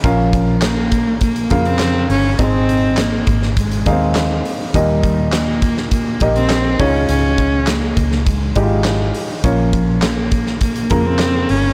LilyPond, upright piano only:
\new Staff \with { instrumentName = "Upright piano" } { \time 4/4 \key bes \dorian \tempo 4 = 102 <des' f' bes' f''>4. r4 <des f' bes' f''>4 r8 | <c' ees' aes' ees''>4. r4 <bes c' ees' aes' f''>4 r8 | <bes, bes ees' g' ees''>4. r4 <bes ees' g' ees''>4 <aes, aes ees' f' des''>8~ | <aes, aes ees' f' des''>4 r4. <aes ees' fes' f' g'>4 r8 |
<bes des' f' des''>4. r4 <des bes f' bes'>4 r8 | }